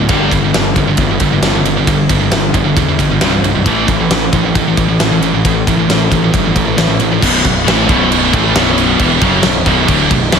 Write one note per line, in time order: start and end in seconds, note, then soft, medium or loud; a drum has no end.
0.09 0.28 G1 medium
0.09 0.31 G2 medium
0.09 0.30 D3 loud
0.09 0.31 G3 loud
0.09 kick loud
0.09 ride medium
0.31 0.51 G1 loud
0.31 0.41 G2 medium
0.31 0.40 D3 medium
0.31 kick medium
0.31 ride medium
0.42 0.52 G2 medium
0.42 0.53 D3 medium
0.53 0.73 G1 medium
0.53 0.74 G2 medium
0.53 0.74 D3 medium
0.53 snare loud
0.53 ride medium
0.75 0.95 G1 medium
0.75 0.85 G2 soft
0.75 0.85 D3 medium
0.75 kick medium
0.75 ride medium
0.86 0.96 G2 medium
0.86 0.97 D3 medium
0.97 1.17 G1 medium
0.97 1.09 G2 medium
0.97 1.08 D3 medium
0.97 kick loud
0.97 ride medium
1.09 1.19 G2 medium
1.09 1.19 D3 medium
1.20 1.40 G1 medium
1.20 1.31 G2 medium
1.20 1.31 D3 medium
1.20 kick medium
1.20 ride medium
1.32 1.41 G2 medium
1.32 1.42 D3 medium
1.41 1.61 G1 medium
1.41 1.53 G2 medium
1.41 1.52 D3 medium
1.41 snare loud
1.41 ride medium
1.53 1.66 G2 medium
1.53 1.65 D3 medium
1.63 1.83 G1 medium
1.63 1.75 G2 medium
1.63 1.75 D3 medium
1.63 ride medium
1.76 1.87 G2 medium
1.76 1.87 D3 medium
1.87 2.06 G1 loud
1.87 2.08 G2 medium
1.87 2.08 D3 medium
1.87 kick loud
1.87 ride medium
2.09 2.29 G1 medium
2.09 2.21 G2 medium
2.09 2.20 D3 medium
2.09 kick medium
2.09 ride medium
2.21 2.31 G2 medium
2.21 2.31 D3 medium
2.31 2.51 G1 medium
2.31 2.52 G2 medium
2.31 2.52 D3 medium
2.31 snare loud
2.31 ride medium
2.53 2.73 G1 medium
2.53 2.64 G2 medium
2.53 2.63 D3 medium
2.53 kick medium
2.53 ride medium
2.65 2.75 G2 soft
2.65 2.75 D3 medium
2.76 2.96 E2 medium
2.76 2.87 G2 medium
2.76 2.87 D3 medium
2.76 kick medium
2.76 ride medium
2.88 2.98 G2 medium
2.88 2.98 D3 medium
2.98 3.18 G1 medium
2.98 3.09 G2 medium
2.98 3.09 D3 medium
2.98 kick medium
2.98 ride medium
3.10 3.20 G2 medium
3.10 3.21 D3 medium
3.21 3.40 C1 medium
3.21 3.30 C2 medium
3.21 3.30 G2 medium
3.21 3.32 C3 medium
3.21 snare loud
3.21 ride medium
3.31 3.42 C2 medium
3.31 3.42 G2 medium
3.43 3.62 B0 medium
3.43 3.54 C2 medium
3.43 3.54 G2 medium
3.43 ride medium
3.55 3.65 C2 medium
3.55 3.65 G2 medium
3.65 3.85 A1 medium
3.65 3.87 A2 medium
3.65 3.87 E3 loud
3.65 3.87 A3 loud
3.65 kick medium
3.65 ride medium
3.88 4.08 A1 medium
3.88 3.98 A2 medium
3.88 3.98 E3 medium
3.88 kick medium
3.88 ride medium
3.99 4.09 A2 medium
3.99 4.09 E3 medium
4.10 4.29 A1 medium
4.10 4.31 A2 medium
4.10 4.31 E3 medium
4.10 snare loud
4.10 ride medium
4.33 4.52 A1 medium
4.33 4.43 A2 medium
4.33 4.42 E3 medium
4.33 kick medium
4.33 ride medium
4.43 4.54 A2 medium
4.43 4.54 E3 medium
4.55 4.74 A1 medium
4.55 4.66 A2 medium
4.55 4.66 E3 medium
4.55 kick loud
4.55 ride medium
4.67 4.77 A2 medium
4.67 4.76 E3 medium
4.77 4.97 A1 medium
4.77 4.88 A2 medium
4.77 4.87 E3 medium
4.77 kick medium
4.77 ride medium
4.88 4.98 A2 medium
4.88 4.99 E3 medium
4.99 5.19 A1 medium
4.99 5.11 A2 medium
4.99 5.10 E3 medium
4.99 snare loud
4.99 ride medium
5.11 5.20 A2 medium
5.11 5.20 E3 medium
5.21 5.41 A1 medium
5.21 5.32 A2 medium
5.21 5.32 E3 medium
5.21 ride medium
5.33 5.43 A2 medium
5.33 5.44 E3 medium
5.45 5.64 A1 medium
5.45 5.65 A2 medium
5.45 5.65 E3 medium
5.45 kick medium
5.45 ride medium
5.67 5.86 A1 medium
5.67 5.76 A2 medium
5.67 5.76 E3 medium
5.67 kick medium
5.67 ride medium
5.77 5.88 A2 medium
5.77 5.88 E3 medium
5.88 6.07 A1 medium
5.88 6.09 A2 medium
5.88 6.09 E3 medium
5.88 snare loud
5.88 ride medium
6.11 6.30 A1 medium
6.11 6.21 A2 medium
6.11 6.21 E3 medium
6.11 kick medium
6.11 ride medium
6.22 6.31 A2 medium
6.22 6.31 E3 medium
6.32 6.53 G1 medium
6.32 6.43 A2 medium
6.32 6.43 E3 medium
6.32 kick loud
6.32 ride medium
6.44 6.53 A2 medium
6.44 6.53 E3 medium
6.54 6.75 A1 medium
6.54 6.64 A2 medium
6.54 6.64 E3 medium
6.54 kick medium
6.54 ride medium
6.65 6.75 A2 medium
6.65 6.76 E3 medium
6.76 6.97 A1 medium
6.76 6.88 A2 medium
6.76 6.87 E3 medium
6.76 snare loud
6.76 ride medium
6.88 6.99 A2 medium
6.88 6.99 E3 medium
7.00 7.19 A1 medium
7.00 7.11 A2 medium
7.00 7.10 E3 medium
7.00 ride medium
7.11 7.21 A2 medium
7.11 7.21 E3 medium
7.21 7.43 B0 loud
7.21 7.43 B1 medium
7.21 7.43 F#2 loud
7.21 7.44 B2 loud
7.21 kick loud
7.21 crash loud
7.21 crash medium
7.44 7.66 B0 medium
7.44 7.62 B1 medium
7.44 7.62 F#2 medium
7.44 kick loud
7.44 crash medium
7.64 7.88 A1 medium
7.64 7.87 A2 medium
7.64 7.87 E3 medium
7.64 7.87 A3 loud
7.68 snare loud
7.68 crash medium
7.87 8.30 B0 medium
7.87 8.32 B1 medium
7.87 8.32 F#2 loud
7.87 8.33 B2 medium
7.87 kick loud
7.87 crash medium
8.12 crash medium
8.32 8.53 A1 medium
8.32 8.54 A2 loud
8.32 8.55 E3 loud
8.32 8.55 A3 loud
8.32 kick loud
8.32 crash medium
8.54 8.96 B0 medium
8.54 8.99 B1 medium
8.54 8.99 F#2 medium
8.54 8.98 B2 medium
8.54 snare loud
8.54 crash medium
8.78 crash medium
8.99 9.20 E1 loud
8.99 9.20 E2 loud
8.99 9.20 B2 loud
8.99 9.20 E3 loud
8.99 kick loud
8.99 crash medium
9.20 9.42 F#1 loud
9.20 9.42 F#2 loud
9.20 9.43 C#3 medium
9.20 9.43 F#3 loud
9.20 kick loud
9.20 crash medium
9.43 9.65 B0 medium
9.43 9.62 B1 medium
9.43 9.62 F#2 medium
9.43 snare loud
9.43 crash medium
9.65 9.87 B0 medium
9.65 9.87 B1 medium
9.65 9.88 F#2 medium
9.65 9.88 B2 loud
9.65 kick loud
9.65 crash medium
9.88 10.09 D1 medium
9.88 10.10 D2 medium
9.88 10.10 A2 medium
9.88 10.10 D3 loud
9.88 kick loud
9.88 crash medium
10.11 10.32 B0 medium
10.11 10.29 B1 medium
10.11 10.29 F#2 medium
10.11 kick loud
10.11 crash medium
10.32 10.39 B0 loud
10.32 10.39 B1 medium
10.32 10.39 F#2 medium
10.32 10.39 B2 medium
10.32 snare loud
10.32 crash medium